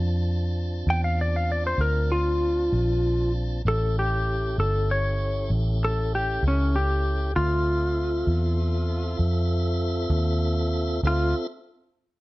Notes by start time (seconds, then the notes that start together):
Already playing: F2 C4 D4 F4 A5
0.87 E2 G5
1.04 F5
1.21 D5
1.36 F5
1.52 D5
1.67 C5
1.78 D2 A#4
2.12 F4
2.72 A#1
3.65 A1 C#4 E4 G4 A4
3.99 G4
4.58 G1 A4
4.91 C#5
5.50 A1
5.85 A4
6.15 G4
6.43 C#2
6.48 C#4
6.76 G4
7.36 D2 C4 F4 A4 E5
8.27 E2
9.19 F2
10.10 D#2
11.03 D2 C4 F4 A4 E5